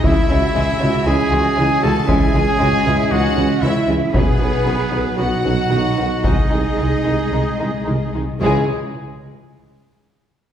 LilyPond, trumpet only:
\new Staff \with { instrumentName = "Trumpet" } { \time 4/4 \key cis \minor \tempo 4 = 114 e'2 gis'4. a'8 | gis'2 fis'4 e'8 r8 | b2 fis'2 | dis'2.~ dis'8 r8 |
gis'8 r2. r8 | }